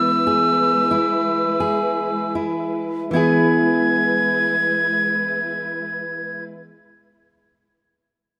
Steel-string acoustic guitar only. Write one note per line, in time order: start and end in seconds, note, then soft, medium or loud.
0.00 3.10 E3 medium
0.00 3.13 B3 soft
0.27 1.60 G#4 medium
0.91 2.35 E4 medium
1.60 3.16 G#4 medium
2.35 3.14 E4 soft
3.11 6.61 E3 medium
3.11 6.63 B3 medium
3.11 6.65 E4 medium
3.16 6.66 G#4 medium